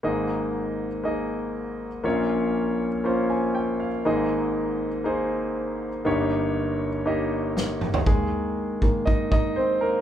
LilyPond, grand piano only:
<<
  \new Staff \with { instrumentName = "Grand piano" } { \time 4/4 \key aes \major \tempo 4 = 120 << { r1 | r2 r8 aes''8 g''8 f''8 | r1 | r1 |
aes'2 <ees' ees''>8 <ees' ees''>8 <c' c''>8 <bes bes'>8 | } \\ { <bes ees' aes' ees''>4. r8 <bes ees' aes' ees''>4. r8 | <bes des' f' des''>4. r8 <bes des' f' c''>4. r8 | <bes ees' aes' ees''>4. r8 <bes ees' aes' c''>4. r8 | <bes ees' g' des''>4. r8 <bes ees' g' ees''>4. r8 |
r1 | } >> }
  \new Staff \with { instrumentName = "Grand piano" } { \clef bass \time 4/4 \key aes \major <aes,, aes,>1 | <bes,, bes,>1 | <aes,, aes,>1 | <g,, g,>1 |
<ees aes bes>4. <ees aes bes>8 r2 | }
>>